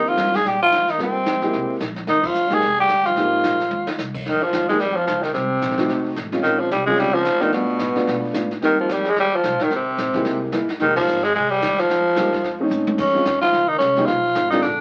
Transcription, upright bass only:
0.00 0.16 D#2 medium
0.18 0.44 G2 medium
0.44 0.71 A#2 medium
0.72 0.98 D#2 medium
0.98 1.25 G2 medium
1.26 1.52 F2 medium
1.53 1.68 C2 medium
1.80 2.06 A#1 medium
2.07 2.33 G#1 medium
2.34 2.61 G1 medium
2.61 2.88 F1 medium
2.88 3.15 G1 medium
3.16 3.42 G#1 medium
3.43 3.70 A#1 medium
3.71 3.97 D#2 medium
3.98 4.24 C2 medium
4.26 4.52 F2 medium
4.53 4.79 D#2 medium
4.80 5.06 F2 medium
5.07 5.33 C#2 medium
5.34 5.60 C2 medium
5.61 5.88 A#1 medium
5.89 6.15 F1 medium
6.16 6.42 A1 medium
6.43 6.70 A#1 medium
6.71 6.97 C2 medium
6.98 7.24 C#2 medium
7.25 7.51 F2 medium
7.52 7.67 G2 medium
7.67 muted upright bass stroke soft
7.80 8.06 A2 medium
8.07 8.33 B2 medium
8.34 8.61 A2 medium
8.62 8.88 G2 medium
8.89 9.15 F2 medium
9.16 9.42 D#2 medium
9.43 9.52 C2 medium
9.52 9.60 A#1 medium
9.61 9.70 G1 medium
9.70 9.97 G1 medium
9.98 10.24 A#1 medium
10.25 10.51 C2 medium
10.53 10.67 G1 medium
10.69 muted upright bass stroke soft
10.80 11.06 F1 medium
11.08 11.34 G#1 medium
11.35 11.61 C2 medium
11.62 11.88 D#2 medium
11.89 12.16 F2 medium
12.16 12.43 G2 medium
12.43 12.69 F2 medium
12.69 12.97 A2 medium
12.98 13.24 F2 medium
13.25 13.52 D#2 medium
13.53 13.79 C#2 medium
13.80 14.07 C2 medium
14.07 14.34 B1 medium
14.35 14.61 G#1 medium
14.62 14.81 A#1 medium

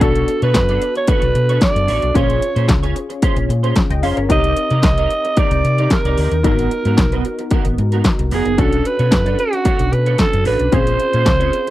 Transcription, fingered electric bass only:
0.01 0.24 B1 loud
0.42 0.56 B2 medium
0.55 0.77 F#2 loud
1.22 1.33 B1 medium
1.35 1.57 B2 loud
1.76 1.86 F#2 medium
1.88 2.00 A1 medium
2.03 2.13 B1 medium
2.15 2.38 A#1 loud
2.56 2.71 A#2 medium
2.69 2.92 C#2 medium
3.36 3.47 A#1 loud
3.49 3.72 A#2 loud
3.90 4.01 C#2 medium
4.03 4.15 F1 medium
4.17 4.28 G1 medium
4.30 4.52 C2 loud
4.71 4.81 C3 medium
4.84 5.06 C2 medium
5.51 5.62 C2 loud
5.64 5.86 C3 loud
6.05 6.15 C2 medium
6.17 6.29 D2 medium
6.32 6.42 D#2 medium
6.44 6.67 G#1 loud
6.85 6.96 G#2 medium
6.98 7.20 B1 loud
7.66 7.76 G#1 medium
7.78 8.01 G#2 loud
8.19 8.30 C2 medium
8.32 8.44 F1 medium
8.46 8.56 F#1 medium
8.58 8.81 B1 loud
8.99 9.13 B2 medium
9.12 9.34 F#2 loud
9.80 9.91 B1 loud
9.92 10.15 B2 loud
10.34 10.44 F#2 medium
10.46 10.58 A1 medium
10.60 10.71 B1 medium
10.73 10.95 A#1 loud
11.14 11.28 A#2 medium
11.26 11.49 C#2 medium

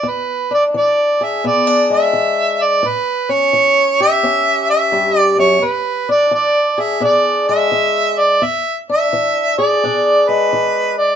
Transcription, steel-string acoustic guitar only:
0.03 0.69 E2 medium
0.51 1.44 D4 medium
0.74 1.39 E3 medium
1.21 2.81 G#4 medium
1.44 2.09 B2 medium
1.44 1.67 B3 medium
1.67 2.83 D4 medium
1.90 2.81 G#3 soft
2.13 2.78 E3 medium
2.83 3.48 A2 medium
3.29 4.23 C#4 medium
3.53 4.18 E3 medium
4.00 5.60 G4 medium
4.23 4.88 E2 medium
4.23 5.60 C#4 medium
4.92 5.38 G2 medium
5.38 5.62 F#2 medium
5.63 6.27 E2 medium
6.09 7.01 D4 medium
6.31 6.97 E3 medium
6.78 8.38 G#4 medium
7.00 7.66 B2 medium
7.00 8.38 D4 soft
7.49 8.39 G#3 medium
7.72 8.37 E3 medium
8.42 9.07 E2 medium
8.89 9.82 D4 medium
9.13 9.77 E3 medium
9.58 11.16 G#4 medium
9.84 10.47 B2 medium
9.84 11.16 D4 medium
10.29 11.16 G#3 medium
10.53 11.16 E3 medium

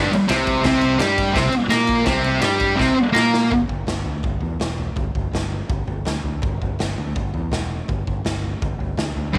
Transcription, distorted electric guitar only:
0.00 0.11 G2 loud
0.00 0.11 G3 medium
0.12 muted distorted electric guitar stroke medium
0.27 0.63 C3 loud
0.27 0.64 C4 loud
0.64 0.99 C3 medium
0.64 1.00 C4 loud
0.98 1.34 G3 loud
0.98 1.34 G4 loud
1.32 1.49 C3 loud
1.32 1.52 C4 loud
1.50 muted distorted electric guitar stroke medium
1.69 2.06 A#3 loud
1.69 2.06 A#4 loud
2.05 2.41 C3 loud
2.05 2.42 C4 loud
2.41 2.78 G3 loud
2.41 2.78 G4 loud
2.76 2.94 C3 medium
2.76 2.96 C4 loud
2.95 muted distorted electric guitar stroke medium
3.12 3.49 A#3 loud
3.12 3.50 A#4 loud
9.33 9.38 G2 medium
9.33 9.38 D3 medium

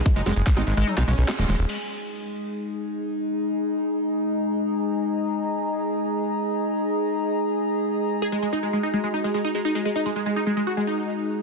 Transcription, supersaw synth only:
0.06 0.10 G#3 medium
0.16 0.20 D#4 loud
0.26 0.31 G#3 medium
0.36 0.41 G#3 medium
0.47 0.51 G#3 medium
0.57 0.61 D#4 loud
0.67 0.71 G#3 medium
0.77 0.82 G#3 medium
0.87 0.92 D#4 medium
0.98 1.02 G#3 medium
1.08 1.61 C#4 loud
8.22 8.26 G#4 loud
8.32 8.37 G#3 medium
8.43 8.47 G#3 medium
8.53 8.57 D#4 medium
8.63 8.67 G#3 medium
8.73 8.77 G#3 medium
8.83 8.88 D#4 medium
8.93 8.98 G#3 medium
9.04 9.08 G#3 medium
9.14 9.18 D#4 medium
9.24 9.28 G#3 medium
9.34 9.39 G#3 medium
9.45 9.49 D#4 medium
9.55 9.59 G#3 medium
9.65 9.69 D#4 loud
9.75 9.80 G#3 medium
9.85 9.90 G#3 medium
9.96 10.00 D#4 medium
10.06 10.10 G#3 medium
10.16 10.20 G#3 medium
10.26 10.31 G#3 medium
10.36 10.41 D#4 medium
10.47 10.51 G#3 medium
10.57 10.61 G#3 medium
10.67 10.71 F#4 medium
10.77 10.82 G#3 medium
10.87 11.40 D#4 loud

